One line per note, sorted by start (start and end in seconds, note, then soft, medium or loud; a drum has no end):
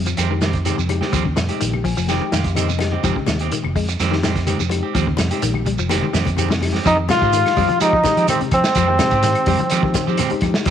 0.00 0.15 F2 medium
0.06 0.27 F3 medium
0.06 muted clean electric guitar stroke soft
0.06 closed hi-hat soft
0.06 shekere medium
0.17 0.71 F2 medium
0.17 0.32 D#3 medium
0.17 0.32 G#3 medium
0.17 0.33 C4 medium
0.17 0.33 G4 medium
0.17 closed hi-hat medium
0.17 claves medium
0.17 shekere medium
0.30 0.40 D#3 medium
0.30 0.50 G#3 medium
0.30 0.50 D#4 medium
0.30 0.50 G4 medium
0.41 0.56 D#3 medium
0.41 0.62 D#3 medium
0.41 0.56 G#3 medium
0.41 0.57 C4 medium
0.41 0.57 G4 medium
0.41 snare medium
0.41 closed hi-hat soft
0.41 shekere medium
0.53 kick medium
0.53 closed hi-hat soft
0.53 shekere soft
0.65 0.78 D#3 medium
0.65 0.79 G#3 medium
0.65 0.77 G#3 medium
0.65 0.76 C4 medium
0.65 0.79 D#4 medium
0.65 0.79 G4 medium
0.65 0.76 G4 medium
0.65 closed hi-hat medium
0.65 high conga medium
0.65 claves medium
0.65 shekere medium
0.77 0.99 F2 medium
0.77 0.98 C3 medium
0.77 muted clean electric guitar stroke soft
0.77 shekere medium
0.88 1.23 G#3 medium
0.88 1.23 D#4 medium
0.88 1.23 G4 medium
0.88 muted clean electric guitar stroke soft
0.88 closed hi-hat medium
0.88 high conga medium
0.88 claves medium
0.88 shekere soft
1.01 1.12 G#3 soft
1.01 1.12 C4 soft
1.01 1.12 G4 medium
1.01 snare soft
1.01 high conga medium
1.13 1.34 D#2 medium
1.13 1.25 D#3 medium
1.13 1.23 F3 medium
1.13 1.24 G#3 medium
1.13 1.24 C4 medium
1.13 1.24 G4 loud
1.13 kick medium
1.13 closed hi-hat medium
1.13 high conga soft
1.13 shekere medium
1.25 1.35 C#3 medium
1.25 muted clean electric guitar stroke soft
1.25 kick medium
1.36 1.49 F2 medium
1.36 1.57 C3 medium
1.36 muted clean electric guitar stroke soft
1.36 snare medium
1.36 closed hi-hat medium
1.36 high conga medium
1.36 claves medium
1.36 shekere medium
1.49 1.82 G#3 medium
1.49 1.60 G#3 soft
1.49 1.60 C4 soft
1.49 1.82 D#4 medium
1.49 1.61 G4 medium
1.49 1.83 G4 medium
1.49 closed hi-hat soft
1.49 shekere soft
1.61 1.94 A#1 medium
1.61 1.81 D#3 medium
1.61 muted clean electric guitar stroke soft
1.61 closed hi-hat medium
1.61 high conga soft
1.61 shekere medium
1.73 muted clean electric guitar stroke soft
1.73 high conga medium
1.73 claves medium
1.84 1.95 F3 medium
1.84 2.07 G#5 medium
1.84 muted clean electric guitar stroke soft
1.84 kick medium
1.84 open hi-hat medium
1.84 shekere soft
1.97 2.19 F1 medium
1.97 2.17 F3 medium
1.97 muted clean electric guitar stroke soft
1.97 shekere medium
2.08 2.23 D#3 medium
2.08 2.35 G#3 medium
2.08 2.24 G#3 medium
2.08 2.24 C4 medium
2.08 2.36 D#4 medium
2.08 2.36 G4 loud
2.08 2.24 G4 medium
2.08 2.31 G5 medium
2.08 snare soft
2.08 closed hi-hat medium
2.08 claves medium
2.08 shekere medium
2.21 muted clean electric guitar stroke medium
2.32 2.96 F2 medium
2.32 2.47 D#3 medium
2.32 2.53 D#3 medium
2.32 2.47 G#3 medium
2.32 2.48 G4 medium
2.32 2.54 F5 medium
2.32 snare medium
2.32 closed hi-hat soft
2.32 shekere medium
2.44 kick medium
2.44 closed hi-hat soft
2.44 shekere soft
2.55 2.69 D#3 medium
2.55 2.69 G#3 medium
2.55 2.68 C4 medium
2.55 2.70 D#4 medium
2.55 2.70 G4 loud
2.55 2.68 G4 medium
2.55 2.78 D#5 medium
2.55 closed hi-hat medium
2.55 high conga medium
2.55 claves medium
2.55 shekere medium
2.68 2.89 C3 medium
2.68 muted clean electric guitar stroke soft
2.68 high conga medium
2.68 shekere medium
2.79 2.94 G#3 medium
2.79 2.94 D#4 medium
2.79 2.94 G4 medium
2.79 3.02 D#5 medium
2.79 muted clean electric guitar stroke soft
2.79 snare soft
2.79 closed hi-hat soft
2.79 high conga medium
2.79 claves medium
2.79 shekere soft
2.92 3.02 G#3 soft
2.92 3.03 C4 medium
2.92 3.03 G4 medium
2.92 high conga medium
3.03 3.15 F1 medium
3.03 3.16 D#3 medium
3.03 3.15 F3 medium
3.03 3.57 G#3 medium
3.03 3.16 G#3 medium
3.03 3.16 C4 loud
3.03 3.57 D#4 medium
3.03 3.58 G4 medium
3.03 3.15 G4 loud
3.03 kick medium
3.03 closed hi-hat medium
3.03 high conga soft
3.03 shekere medium
3.16 3.26 C#3 medium
3.16 muted clean electric guitar stroke soft
3.16 kick medium
3.26 3.49 D#2 medium
3.26 3.48 C3 medium
3.26 muted clean electric guitar stroke soft
3.26 snare medium
3.26 closed hi-hat soft
3.26 high conga medium
3.26 claves medium
3.26 shekere medium
3.39 3.51 G#3 soft
3.39 3.51 C4 medium
3.39 3.51 G4 medium
3.39 closed hi-hat soft
3.39 shekere soft
3.52 3.72 D#3 medium
3.52 muted clean electric guitar stroke soft
3.52 closed hi-hat medium
3.52 shekere medium
3.63 3.75 F1 medium
3.63 muted clean electric guitar stroke soft
3.63 high conga medium
3.63 claves medium
3.76 3.97 F2 medium
3.76 3.86 G#3 medium
3.76 muted clean electric guitar stroke soft
3.76 kick medium
3.76 open hi-hat medium
3.76 shekere soft
3.89 muted clean electric guitar stroke soft
3.89 closed hi-hat soft
3.89 shekere medium
3.99 4.53 F2 medium
3.99 4.14 D#3 medium
3.99 4.15 G#3 medium
3.99 4.15 C4 medium
3.99 4.15 G4 medium
3.99 snare soft
3.99 closed hi-hat medium
3.99 high conga soft
3.99 claves medium
3.99 shekere medium
4.11 4.21 D#3 medium
4.11 4.31 G#3 medium
4.11 4.31 D#4 medium
4.11 4.32 G4 medium
4.11 snare soft
4.23 4.38 D#3 medium
4.23 4.43 D#3 medium
4.23 4.38 G#3 medium
4.23 4.38 C4 medium
4.23 4.39 G4 medium
4.23 snare medium
4.23 closed hi-hat soft
4.23 shekere medium
4.36 kick medium
4.36 snare soft
4.36 closed hi-hat soft
4.36 shekere soft
4.46 4.59 D#3 medium
4.46 4.61 G#3 medium
4.46 4.59 G#3 medium
4.46 4.58 C4 medium
4.46 4.61 D#4 medium
4.46 4.61 G4 medium
4.46 4.58 G4 medium
4.46 closed hi-hat medium
4.46 high conga medium
4.46 claves medium
4.46 shekere medium
4.58 4.81 F2 medium
4.58 4.80 C3 medium
4.58 muted clean electric guitar stroke soft
4.58 high conga medium
4.58 shekere medium
4.69 5.04 G#3 medium
4.69 5.04 D#4 medium
4.69 5.05 G4 medium
4.69 muted clean electric guitar stroke soft
4.69 closed hi-hat medium
4.69 high conga medium
4.69 claves medium
4.69 shekere soft
4.83 4.94 C4 soft
4.83 4.94 G4 medium
4.94 5.16 D#2 medium
4.94 5.07 D#3 medium
4.94 5.05 F3 medium
4.94 5.06 G#3 medium
4.94 5.06 C4 medium
4.94 5.06 G4 medium
4.94 kick medium
4.94 closed hi-hat medium
4.94 high conga soft
4.94 shekere medium
5.07 5.17 C#3 medium
5.07 muted clean electric guitar stroke soft
5.07 kick medium
5.17 5.30 F2 medium
5.17 5.39 C3 medium
5.17 muted clean electric guitar stroke soft
5.17 snare medium
5.17 closed hi-hat medium
5.17 high conga medium
5.17 claves medium
5.17 shekere medium
5.31 5.64 G#3 medium
5.31 5.42 G#3 soft
5.31 5.42 C4 medium
5.31 5.64 D#4 medium
5.31 5.42 G4 medium
5.31 5.64 G4 medium
5.31 closed hi-hat soft
5.31 shekere soft
5.42 5.75 A#1 medium
5.42 5.63 D#3 medium
5.42 muted clean electric guitar stroke soft
5.42 closed hi-hat medium
5.42 shekere medium
5.54 muted clean electric guitar stroke soft
5.54 high conga medium
5.54 claves medium
5.65 5.77 G3 medium
5.65 muted clean electric guitar stroke soft
5.65 kick medium
5.65 closed hi-hat medium
5.65 shekere soft
5.78 6.00 F1 loud
5.78 5.99 F3 medium
5.78 muted clean electric guitar stroke soft
5.78 shekere medium
5.89 6.05 D#3 medium
5.89 6.05 G#3 medium
5.89 6.17 G#3 medium
5.89 6.05 C4 medium
5.89 6.17 D#4 medium
5.89 6.05 G4 medium
5.89 6.17 G4 loud
5.89 snare soft
5.89 closed hi-hat medium
5.89 high conga medium
5.89 claves medium
5.89 shekere medium
6.01 6.12 D#3 medium
6.01 high conga medium
6.13 6.78 F2 medium
6.13 6.28 D#3 medium
6.13 6.34 D#3 medium
6.13 6.28 G#3 medium
6.13 6.29 C4 medium
6.13 6.29 G4 medium
6.13 snare medium
6.13 closed hi-hat soft
6.13 shekere medium
6.25 kick medium
6.25 closed hi-hat soft
6.25 high conga loud
6.25 shekere soft
6.37 6.50 D#3 medium
6.37 6.52 G#3 medium
6.37 6.49 G#3 medium
6.37 6.49 C4 medium
6.37 6.52 D#4 medium
6.37 6.52 G4 loud
6.37 6.49 G4 medium
6.37 closed hi-hat medium
6.37 low conga medium
6.37 claves medium
6.37 shekere medium
6.48 6.70 C3 medium
6.48 muted clean electric guitar stroke soft
6.48 snare medium
6.48 low conga medium
6.48 shekere medium
6.61 6.75 G#3 medium
6.61 6.76 D#4 medium
6.61 6.76 G4 medium
6.61 muted clean electric guitar stroke soft
6.61 snare soft
6.61 open hi-hat medium
6.61 low conga medium
6.61 claves medium
6.61 shekere soft
6.73 6.84 G#3 soft
6.73 6.84 C4 medium
6.73 6.85 G4 medium
6.73 snare soft
6.73 low conga medium
6.85 7.07 F2 loud
6.85 6.96 F3 medium
6.85 6.97 G#3 medium
6.85 6.96 C4 medium
6.85 6.97 D#4 medium
6.85 6.97 D#4 loud
6.85 6.96 G4 medium
6.85 muted clean electric guitar stroke medium
6.85 kick medium
6.85 closed hi-hat medium
6.85 shekere medium
6.97 7.07 D#3 medium
6.97 muted clean electric guitar stroke soft
7.09 7.29 C3 medium
7.09 7.77 F4 medium
7.09 7.77 F4 loud
7.09 muted clean electric guitar stroke soft
7.09 snare medium
7.09 closed hi-hat soft
7.09 high conga loud
7.09 low conga medium
7.09 claves medium
7.09 shekere medium
7.20 7.43 G#2 medium
7.20 7.54 G#3 medium
7.20 7.32 G#3 soft
7.20 7.32 C4 medium
7.20 7.54 D#4 medium
7.20 7.55 G4 medium
7.20 7.32 G4 medium
7.20 kick medium
7.20 shekere soft
7.33 7.53 D#3 medium
7.33 muted clean electric guitar stroke soft
7.33 closed hi-hat medium
7.33 shekere medium
7.46 snare soft
7.46 closed hi-hat soft
7.46 claves medium
7.56 7.68 F2 medium
7.56 7.69 D#3 medium
7.56 7.67 G3 medium
7.56 7.69 G#3 medium
7.56 7.68 C4 medium
7.56 7.68 G4 medium
7.56 kick medium
7.56 open hi-hat medium
7.56 low conga medium
7.56 shekere soft
7.69 7.89 F3 medium
7.69 muted clean electric guitar stroke soft
7.69 muted fingered electric bass stroke soft
7.69 closed hi-hat soft
7.69 high conga medium
7.80 8.02 F3 medium
7.80 7.94 G#3 medium
7.80 7.92 G#3 medium
7.80 7.91 C4 medium
7.80 7.94 D#4 medium
7.80 8.25 D#4 medium
7.80 8.26 D#4 loud
7.80 7.95 G4 medium
7.80 7.91 G4 medium
7.80 muted clean electric guitar stroke medium
7.80 closed hi-hat medium
7.80 claves medium
7.80 shekere medium
7.93 kick medium
8.03 8.25 D#3 medium
8.03 8.51 G#3 medium
8.03 8.52 D#4 medium
8.03 8.52 G4 medium
8.03 muted clean electric guitar stroke soft
8.03 kick medium
8.03 snare soft
8.03 closed hi-hat soft
8.03 high conga medium
8.03 shekere medium
8.17 8.27 F3 medium
8.17 8.29 G#3 soft
8.17 8.28 C4 soft
8.17 8.29 G4 medium
8.17 closed hi-hat soft
8.17 shekere soft
8.28 8.41 D#3 medium
8.28 8.40 C4 medium
8.28 8.41 C4 medium
8.28 8.40 C4 medium
8.28 8.41 G4 medium
8.28 closed hi-hat medium
8.28 high conga medium
8.28 claves medium
8.28 shekere medium
8.41 8.61 C3 medium
8.41 muted fingered electric bass stroke soft
8.41 muted clean electric guitar stroke soft
8.41 closed hi-hat soft
8.51 8.63 F3 medium
8.51 10.39 C4 medium
8.51 10.39 C4 loud
8.51 muted clean electric guitar stroke soft
8.51 kick medium
8.51 closed hi-hat medium
8.51 low conga medium
8.51 claves medium
8.51 shekere soft
8.64 snare medium
8.64 closed hi-hat soft
8.64 shekere medium
8.75 8.97 F2 medium
8.75 8.87 F3 medium
8.75 8.87 G#3 medium
8.75 8.87 C4 medium
8.75 8.87 G4 loud
8.75 muted clean electric guitar stroke medium
8.75 kick medium
8.75 closed hi-hat medium
8.75 shekere medium
8.87 8.98 D#3 medium
8.87 8.94 G#3 medium
8.87 8.95 D#4 medium
8.87 8.95 G4 medium
8.87 muted clean electric guitar stroke soft
8.99 9.20 C3 medium
8.99 9.46 G#3 medium
8.99 9.46 D#4 medium
8.99 9.47 G4 medium
8.99 snare medium
8.99 closed hi-hat medium
8.99 high conga loud
8.99 low conga medium
8.99 claves medium
8.99 shekere medium
9.11 9.34 G#2 medium
9.11 9.23 C4 medium
9.11 9.23 G4 medium
9.11 kick medium
9.11 closed hi-hat soft
9.11 shekere soft
9.23 9.44 D#3 medium
9.23 muted clean electric guitar stroke soft
9.23 snare soft
9.23 closed hi-hat medium
9.23 shekere medium
9.35 closed hi-hat soft
9.35 claves medium
9.46 9.58 F2 medium
9.46 9.60 D#3 medium
9.46 9.58 G3 medium
9.46 9.59 G#3 medium
9.46 9.59 C4 medium
9.46 9.58 G4 medium
9.46 kick medium
9.46 open hi-hat medium
9.46 low conga medium
9.46 shekere soft
9.59 9.80 F3 medium
9.59 muted clean electric guitar stroke medium
9.59 closed hi-hat soft
9.59 high conga medium
9.70 9.84 D#3 medium
9.70 9.93 F3 loud
9.70 9.83 G#3 medium
9.70 9.83 C4 medium
9.70 9.82 G4 loud
9.70 closed hi-hat medium
9.70 claves medium
9.70 shekere medium
9.82 9.93 D#3 medium
9.82 9.96 G#3 medium
9.82 9.96 D#4 medium
9.82 9.96 G4 loud
9.82 muted clean electric guitar stroke soft
9.82 kick medium
9.94 10.15 D#3 medium
9.94 muted clean electric guitar stroke soft
9.94 kick medium
9.94 snare soft
9.94 closed hi-hat medium
9.94 high conga medium
9.94 shekere medium
10.07 10.18 F3 medium
10.07 10.20 G#3 medium
10.07 10.18 G#3 soft
10.07 10.18 C4 medium
10.07 10.20 D#4 medium
10.07 10.18 G4 medium
10.07 10.21 G4 medium
10.07 shekere soft
10.17 10.31 D#3 medium
10.17 10.31 G#3 medium
10.17 10.31 C4 medium
10.17 10.30 G4 medium
10.17 closed hi-hat medium
10.17 high conga medium
10.17 low conga medium
10.17 claves medium
10.17 shekere medium
10.30 10.70 G#3 medium
10.30 10.70 D#4 medium
10.30 10.70 G4 loud
10.30 muted clean electric guitar stroke soft
10.30 muted fingered electric bass stroke soft
10.30 closed hi-hat soft
10.41 10.53 F3 medium
10.41 muted clean electric guitar stroke soft
10.41 kick medium
10.41 closed hi-hat soft
10.41 high conga medium
10.41 low conga medium
10.41 claves medium
10.41 shekere soft
10.54 snare medium
10.54 shekere medium
10.65 10.70 F2 medium
10.65 10.70 F3 loud
10.65 10.70 G#3 medium
10.65 kick medium
10.65 closed hi-hat medium